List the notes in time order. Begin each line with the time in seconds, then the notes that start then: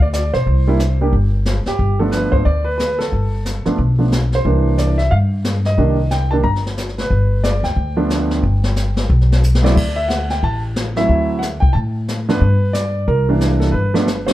Already playing: D2
0.00 D5, kick
0.13 D5, snare, hi-hat pedal
0.34 B1 C5, snare
0.46 C2, brush sweep, kick
0.67 G3 A#3 D4 E4
0.80 snare, hi-hat pedal
1.01 G3 A#3 D4 G4
1.13 G1, brush sweep, kick
1.46 snare, hi-hat pedal
1.66 G4, muted upright bass stroke, snare
1.79 G1, brush sweep, kick
1.99 F3 A3 B3 D4 A4
2.11 B4, snare, hi-hat pedal
2.32 G#1 C5, kick
2.45 D2 D5, brush sweep, kick
2.65 B4
2.78 B4, snare, hi-hat pedal
2.99 A4, snare
3.12 G1, brush sweep, kick
3.45 snare, hi-hat pedal
3.66 F3 A3 B3 D4, muted upright bass stroke, snare
3.78 B1, brush sweep, kick
3.99 F3 A3 B3 D4
4.12 snare, hi-hat pedal
4.32 C5, snare
4.45 C2 E3 G3 A#3 D4, brush sweep, kick
4.78 D5, snare, hi-hat pedal
4.98 E5, snare
5.11 G2 F5, brush sweep, kick
5.44 snare, hi-hat pedal
5.65 D#5, snare
5.78 C2 D#3 G3 A#3 D4, brush sweep, kick
6.11 G5, snare, hi-hat pedal
6.31 D#3 G3 A#3 D4 A5
6.44 G1 A#5, brush sweep, kick
6.56 snare
6.66 snare
6.78 snare, hi-hat pedal
6.89 snare
6.98 B4, snare
7.10 G1, brush sweep, kick
7.44 D5, snare, hi-hat pedal
7.63 D2 G5, snare
7.76 D2, brush sweep, kick
7.97 F3 A3 B3 D4
8.10 snare, hi-hat pedal
8.31 snare
8.43 G1, brush sweep, kick
8.64 snare
8.76 snare, hi-hat pedal
8.97 snare
9.10 B1, brush sweep, kick
9.21 snare
9.32 snare
9.43 hi-hat pedal
9.55 snare
9.63 F#3 A3 C4 E4 D5, snare
9.76 D2, brush sweep, kick, crash
9.96 E5
10.09 F#5, snare, hi-hat pedal
10.30 G5, snare
10.43 A1 A5, brush sweep, kick
10.76 snare, hi-hat pedal
10.96 F#3 A3 C4 E4 E5, snare
11.09 D2, brush sweep, kick
11.39 F#5, snare, hi-hat pedal
11.60 C2 G5, kick
11.73 A2 A5, brush sweep, kick
12.08 snare, hi-hat pedal
12.29 F3 A3 B3 D4 B4, snare
12.41 G2, brush sweep, kick
12.73 D5, snare, hi-hat pedal
13.08 C2 A#4, brush sweep, kick
13.29 E3 G3 A#3 D4
13.41 snare, hi-hat pedal
13.60 A4, snare
13.71 G1 B4, brush sweep, kick
13.94 F3 A3 B3 D4, snare
14.07 snare, hi-hat pedal
14.27 F#3 A3 C4 D4 C5, snare, ride